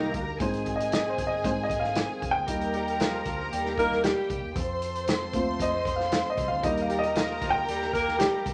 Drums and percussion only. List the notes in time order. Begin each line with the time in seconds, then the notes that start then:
0.14 kick, closed hi-hat
0.40 kick, closed hi-hat
0.53 closed hi-hat
0.66 kick, closed hi-hat
0.80 closed hi-hat
0.92 snare, closed hi-hat
1.18 kick, closed hi-hat
1.44 kick, closed hi-hat
1.70 kick, closed hi-hat
1.84 snare
1.95 snare, closed hi-hat
2.22 kick, closed hi-hat
2.48 kick, closed hi-hat
2.61 closed hi-hat
2.73 closed hi-hat
2.88 closed hi-hat
3.00 snare, closed hi-hat
3.25 kick, closed hi-hat
3.53 closed hi-hat
3.66 snare
3.78 kick, closed hi-hat
3.92 snare
4.04 snare, closed hi-hat
4.30 kick, closed hi-hat
4.56 kick, closed hi-hat
4.82 closed hi-hat
4.95 closed hi-hat
5.07 snare, closed hi-hat
5.33 kick, closed hi-hat
5.60 kick, closed hi-hat
5.85 kick, closed hi-hat
6.00 snare
6.12 snare, closed hi-hat
6.38 kick, closed hi-hat
6.63 kick, closed hi-hat
6.77 closed hi-hat
6.90 closed hi-hat
7.03 closed hi-hat
7.15 snare, closed hi-hat
7.42 kick, closed hi-hat
7.68 closed hi-hat
7.82 snare
7.93 kick, closed hi-hat
8.08 snare
8.20 snare, closed hi-hat
8.46 kick, closed hi-hat